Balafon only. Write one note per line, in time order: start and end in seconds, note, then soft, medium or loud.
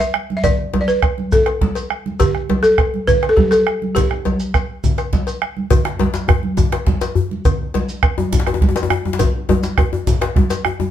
0.00 0.36 E5 medium
0.37 0.44 E5 medium
0.44 0.80 D5 loud
0.81 0.88 D5 medium
0.88 1.15 B4 medium
1.32 1.87 A4 medium
2.20 2.61 G4 medium
2.63 3.08 A4 loud
3.07 3.30 B4 loud
3.29 3.36 A4 medium
3.37 3.52 G4 medium
3.51 3.78 A4 medium
3.95 5.37 G4 medium